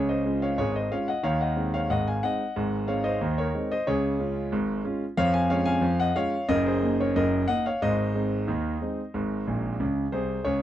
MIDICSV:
0, 0, Header, 1, 2, 480
1, 0, Start_track
1, 0, Key_signature, -5, "major"
1, 0, Tempo, 659341
1, 898, Time_signature, 2, 2, 24, 8
1, 7731, End_track
2, 0, Start_track
2, 0, Title_t, "Grand piano"
2, 0, Program_c, 0, 0
2, 0, Note_on_c, 0, 37, 64
2, 0, Note_on_c, 0, 49, 68
2, 65, Note_on_c, 0, 75, 66
2, 72, Note_on_c, 0, 72, 49
2, 75, Control_c, 0, 64, 127
2, 144, Note_off_c, 0, 37, 0
2, 144, Note_off_c, 0, 49, 0
2, 187, Note_on_c, 0, 56, 40
2, 191, Note_on_c, 0, 65, 40
2, 192, Note_on_c, 0, 61, 40
2, 289, Note_off_c, 0, 72, 0
2, 301, Note_off_c, 0, 75, 0
2, 307, Note_on_c, 0, 77, 68
2, 315, Note_on_c, 0, 73, 54
2, 316, Note_off_c, 0, 56, 0
2, 319, Note_off_c, 0, 65, 0
2, 320, Note_off_c, 0, 61, 0
2, 412, Note_off_c, 0, 73, 0
2, 422, Note_off_c, 0, 77, 0
2, 423, Note_on_c, 0, 32, 63
2, 423, Note_on_c, 0, 73, 79
2, 424, Control_c, 0, 64, 0
2, 425, Note_on_c, 0, 44, 60
2, 434, Note_on_c, 0, 68, 63
2, 538, Note_off_c, 0, 68, 0
2, 540, Note_off_c, 0, 73, 0
2, 551, Note_on_c, 0, 75, 64
2, 556, Note_on_c, 0, 72, 46
2, 625, Note_off_c, 0, 32, 0
2, 626, Note_off_c, 0, 44, 0
2, 659, Note_off_c, 0, 72, 0
2, 664, Note_off_c, 0, 75, 0
2, 664, Note_on_c, 0, 56, 40
2, 667, Note_on_c, 0, 61, 41
2, 668, Note_on_c, 0, 77, 75
2, 671, Note_on_c, 0, 65, 45
2, 674, Note_on_c, 0, 73, 56
2, 778, Note_off_c, 0, 73, 0
2, 783, Note_off_c, 0, 77, 0
2, 786, Note_on_c, 0, 78, 67
2, 794, Note_off_c, 0, 56, 0
2, 797, Note_off_c, 0, 61, 0
2, 798, Note_on_c, 0, 75, 55
2, 799, Note_off_c, 0, 65, 0
2, 897, Note_on_c, 0, 51, 70
2, 899, Note_on_c, 0, 39, 64
2, 900, Note_off_c, 0, 75, 0
2, 900, Note_on_c, 0, 77, 80
2, 902, Note_off_c, 0, 78, 0
2, 906, Note_on_c, 0, 73, 65
2, 1014, Note_off_c, 0, 73, 0
2, 1019, Note_off_c, 0, 77, 0
2, 1024, Note_on_c, 0, 78, 63
2, 1032, Note_on_c, 0, 75, 50
2, 1050, Control_c, 0, 64, 127
2, 1102, Note_off_c, 0, 51, 0
2, 1103, Note_off_c, 0, 39, 0
2, 1137, Note_on_c, 0, 56, 34
2, 1138, Note_on_c, 0, 60, 34
2, 1145, Note_on_c, 0, 63, 42
2, 1249, Note_off_c, 0, 75, 0
2, 1261, Note_off_c, 0, 78, 0
2, 1265, Note_on_c, 0, 77, 74
2, 1269, Note_off_c, 0, 56, 0
2, 1270, Note_off_c, 0, 60, 0
2, 1273, Note_on_c, 0, 73, 55
2, 1275, Note_off_c, 0, 63, 0
2, 1378, Note_off_c, 0, 73, 0
2, 1382, Note_off_c, 0, 77, 0
2, 1382, Note_on_c, 0, 44, 60
2, 1384, Note_on_c, 0, 78, 77
2, 1385, Control_c, 0, 64, 0
2, 1385, Note_on_c, 0, 32, 62
2, 1390, Note_on_c, 0, 75, 64
2, 1496, Note_off_c, 0, 75, 0
2, 1500, Note_off_c, 0, 78, 0
2, 1511, Note_on_c, 0, 80, 68
2, 1518, Note_on_c, 0, 77, 50
2, 1584, Note_off_c, 0, 44, 0
2, 1585, Note_off_c, 0, 32, 0
2, 1620, Note_off_c, 0, 77, 0
2, 1624, Note_off_c, 0, 80, 0
2, 1624, Note_on_c, 0, 78, 81
2, 1625, Note_on_c, 0, 56, 40
2, 1627, Note_on_c, 0, 60, 39
2, 1632, Note_on_c, 0, 63, 44
2, 1637, Note_on_c, 0, 75, 60
2, 1754, Note_off_c, 0, 56, 0
2, 1756, Note_off_c, 0, 60, 0
2, 1759, Note_off_c, 0, 63, 0
2, 1865, Note_on_c, 0, 44, 74
2, 1866, Note_on_c, 0, 32, 61
2, 1980, Control_c, 0, 64, 127
2, 2064, Note_off_c, 0, 44, 0
2, 2065, Note_off_c, 0, 32, 0
2, 2076, Note_off_c, 0, 75, 0
2, 2096, Note_on_c, 0, 77, 71
2, 2097, Note_on_c, 0, 56, 35
2, 2098, Note_off_c, 0, 78, 0
2, 2099, Note_on_c, 0, 60, 39
2, 2101, Note_on_c, 0, 63, 44
2, 2102, Note_on_c, 0, 73, 59
2, 2210, Note_off_c, 0, 73, 0
2, 2213, Note_on_c, 0, 75, 76
2, 2215, Note_off_c, 0, 77, 0
2, 2222, Note_on_c, 0, 72, 59
2, 2228, Note_off_c, 0, 56, 0
2, 2229, Note_off_c, 0, 60, 0
2, 2231, Note_off_c, 0, 63, 0
2, 2336, Note_on_c, 0, 39, 65
2, 2338, Note_on_c, 0, 51, 67
2, 2340, Control_c, 0, 64, 0
2, 2441, Note_off_c, 0, 72, 0
2, 2453, Note_off_c, 0, 75, 0
2, 2461, Note_on_c, 0, 73, 71
2, 2475, Note_on_c, 0, 70, 55
2, 2538, Note_off_c, 0, 39, 0
2, 2539, Note_off_c, 0, 51, 0
2, 2579, Note_on_c, 0, 56, 42
2, 2585, Note_on_c, 0, 60, 41
2, 2585, Note_on_c, 0, 63, 44
2, 2687, Note_off_c, 0, 70, 0
2, 2696, Note_off_c, 0, 73, 0
2, 2705, Note_on_c, 0, 75, 77
2, 2708, Note_off_c, 0, 56, 0
2, 2710, Note_on_c, 0, 72, 58
2, 2712, Note_off_c, 0, 60, 0
2, 2713, Note_off_c, 0, 63, 0
2, 2812, Note_off_c, 0, 72, 0
2, 2817, Note_off_c, 0, 75, 0
2, 2818, Note_on_c, 0, 73, 80
2, 2820, Note_on_c, 0, 49, 83
2, 2823, Note_on_c, 0, 37, 63
2, 2830, Note_on_c, 0, 68, 61
2, 2971, Control_c, 0, 64, 127
2, 3019, Note_off_c, 0, 49, 0
2, 3020, Note_off_c, 0, 37, 0
2, 3051, Note_on_c, 0, 56, 41
2, 3058, Note_on_c, 0, 61, 44
2, 3061, Note_on_c, 0, 65, 49
2, 3181, Note_off_c, 0, 56, 0
2, 3186, Note_off_c, 0, 61, 0
2, 3189, Note_off_c, 0, 65, 0
2, 3268, Note_off_c, 0, 68, 0
2, 3291, Note_off_c, 0, 73, 0
2, 3292, Control_c, 0, 64, 0
2, 3292, Note_on_c, 0, 32, 68
2, 3292, Note_on_c, 0, 44, 72
2, 3493, Note_off_c, 0, 32, 0
2, 3493, Note_off_c, 0, 44, 0
2, 3527, Note_on_c, 0, 56, 44
2, 3528, Note_on_c, 0, 61, 48
2, 3534, Note_on_c, 0, 65, 50
2, 3658, Note_off_c, 0, 56, 0
2, 3659, Note_off_c, 0, 61, 0
2, 3663, Note_off_c, 0, 65, 0
2, 3766, Note_on_c, 0, 53, 70
2, 3767, Note_on_c, 0, 77, 108
2, 3768, Note_on_c, 0, 41, 81
2, 3773, Note_on_c, 0, 73, 81
2, 3881, Note_off_c, 0, 73, 0
2, 3886, Note_off_c, 0, 77, 0
2, 3886, Note_on_c, 0, 80, 91
2, 3897, Note_on_c, 0, 77, 63
2, 3906, Control_c, 0, 64, 127
2, 3969, Note_off_c, 0, 53, 0
2, 3970, Note_off_c, 0, 41, 0
2, 3993, Note_off_c, 0, 77, 0
2, 4003, Note_on_c, 0, 56, 43
2, 4004, Note_on_c, 0, 77, 87
2, 4005, Note_off_c, 0, 80, 0
2, 4007, Note_on_c, 0, 61, 44
2, 4012, Note_on_c, 0, 65, 54
2, 4013, Note_on_c, 0, 73, 67
2, 4111, Note_off_c, 0, 77, 0
2, 4117, Note_on_c, 0, 80, 99
2, 4121, Note_off_c, 0, 73, 0
2, 4122, Note_on_c, 0, 77, 76
2, 4135, Note_off_c, 0, 56, 0
2, 4138, Note_off_c, 0, 61, 0
2, 4142, Note_off_c, 0, 65, 0
2, 4231, Note_on_c, 0, 53, 72
2, 4237, Note_on_c, 0, 41, 71
2, 4249, Control_c, 0, 64, 0
2, 4345, Note_off_c, 0, 77, 0
2, 4359, Note_off_c, 0, 80, 0
2, 4365, Note_on_c, 0, 78, 84
2, 4373, Note_on_c, 0, 75, 60
2, 4439, Note_off_c, 0, 53, 0
2, 4443, Note_off_c, 0, 41, 0
2, 4480, Note_off_c, 0, 75, 0
2, 4482, Note_on_c, 0, 56, 49
2, 4482, Note_on_c, 0, 77, 90
2, 4483, Note_off_c, 0, 78, 0
2, 4483, Note_on_c, 0, 61, 46
2, 4488, Note_on_c, 0, 65, 48
2, 4489, Note_on_c, 0, 73, 74
2, 4614, Note_off_c, 0, 56, 0
2, 4614, Note_off_c, 0, 61, 0
2, 4618, Note_off_c, 0, 65, 0
2, 4708, Note_off_c, 0, 73, 0
2, 4721, Note_off_c, 0, 77, 0
2, 4721, Note_on_c, 0, 30, 78
2, 4722, Note_on_c, 0, 75, 101
2, 4723, Note_on_c, 0, 42, 80
2, 4733, Note_on_c, 0, 70, 78
2, 4839, Note_off_c, 0, 70, 0
2, 4841, Note_off_c, 0, 75, 0
2, 4851, Note_on_c, 0, 72, 72
2, 4856, Control_c, 0, 64, 127
2, 4859, Note_on_c, 0, 68, 64
2, 4924, Note_off_c, 0, 30, 0
2, 4925, Note_off_c, 0, 42, 0
2, 4971, Note_on_c, 0, 58, 48
2, 4974, Note_on_c, 0, 63, 43
2, 5073, Note_off_c, 0, 68, 0
2, 5085, Note_off_c, 0, 72, 0
2, 5099, Note_on_c, 0, 73, 70
2, 5100, Note_off_c, 0, 58, 0
2, 5102, Note_off_c, 0, 63, 0
2, 5107, Note_on_c, 0, 70, 50
2, 5206, Note_off_c, 0, 70, 0
2, 5209, Control_c, 0, 64, 0
2, 5210, Note_off_c, 0, 73, 0
2, 5211, Note_on_c, 0, 30, 73
2, 5212, Note_on_c, 0, 42, 69
2, 5213, Note_on_c, 0, 75, 86
2, 5221, Note_on_c, 0, 70, 71
2, 5411, Note_off_c, 0, 30, 0
2, 5412, Note_off_c, 0, 42, 0
2, 5435, Note_off_c, 0, 70, 0
2, 5443, Note_off_c, 0, 75, 0
2, 5443, Note_on_c, 0, 78, 94
2, 5446, Note_on_c, 0, 58, 45
2, 5449, Note_on_c, 0, 63, 47
2, 5454, Note_on_c, 0, 75, 64
2, 5560, Note_off_c, 0, 75, 0
2, 5562, Note_off_c, 0, 78, 0
2, 5576, Note_on_c, 0, 77, 76
2, 5577, Note_off_c, 0, 58, 0
2, 5579, Note_off_c, 0, 63, 0
2, 5582, Note_on_c, 0, 73, 59
2, 5685, Note_off_c, 0, 73, 0
2, 5689, Note_off_c, 0, 77, 0
2, 5693, Note_on_c, 0, 44, 79
2, 5695, Note_on_c, 0, 75, 92
2, 5698, Note_on_c, 0, 32, 68
2, 5707, Note_on_c, 0, 72, 67
2, 5805, Control_c, 0, 64, 127
2, 5894, Note_off_c, 0, 44, 0
2, 5896, Note_off_c, 0, 32, 0
2, 5932, Note_on_c, 0, 56, 41
2, 5934, Note_on_c, 0, 60, 40
2, 5937, Note_on_c, 0, 63, 40
2, 6062, Note_off_c, 0, 56, 0
2, 6064, Note_off_c, 0, 60, 0
2, 6066, Note_off_c, 0, 63, 0
2, 6169, Note_on_c, 0, 39, 63
2, 6170, Note_on_c, 0, 51, 66
2, 6174, Control_c, 0, 64, 0
2, 6374, Note_off_c, 0, 39, 0
2, 6374, Note_off_c, 0, 51, 0
2, 6416, Note_on_c, 0, 56, 39
2, 6421, Note_on_c, 0, 60, 42
2, 6423, Note_on_c, 0, 63, 45
2, 6547, Note_off_c, 0, 56, 0
2, 6550, Note_off_c, 0, 60, 0
2, 6552, Note_off_c, 0, 63, 0
2, 6655, Note_on_c, 0, 32, 59
2, 6655, Note_on_c, 0, 44, 63
2, 6816, Control_c, 0, 64, 127
2, 6858, Note_off_c, 0, 32, 0
2, 6858, Note_off_c, 0, 44, 0
2, 6895, Note_on_c, 0, 46, 55
2, 6897, Note_on_c, 0, 34, 55
2, 7074, Note_off_c, 0, 46, 0
2, 7076, Note_off_c, 0, 34, 0
2, 7134, Note_on_c, 0, 37, 60
2, 7134, Note_on_c, 0, 49, 62
2, 7136, Control_c, 0, 64, 0
2, 7314, Note_off_c, 0, 37, 0
2, 7314, Note_off_c, 0, 49, 0
2, 7357, Note_off_c, 0, 72, 0
2, 7370, Note_on_c, 0, 36, 61
2, 7370, Note_on_c, 0, 72, 67
2, 7372, Note_on_c, 0, 48, 61
2, 7380, Note_off_c, 0, 75, 0
2, 7380, Note_on_c, 0, 68, 51
2, 7552, Note_off_c, 0, 36, 0
2, 7553, Note_off_c, 0, 48, 0
2, 7601, Note_off_c, 0, 68, 0
2, 7604, Note_on_c, 0, 73, 75
2, 7605, Note_on_c, 0, 49, 76
2, 7606, Note_on_c, 0, 37, 62
2, 7613, Note_off_c, 0, 72, 0
2, 7613, Note_on_c, 0, 68, 54
2, 7726, Note_off_c, 0, 68, 0
2, 7730, Note_off_c, 0, 73, 0
2, 7731, Note_off_c, 0, 37, 0
2, 7731, Note_off_c, 0, 49, 0
2, 7731, End_track
0, 0, End_of_file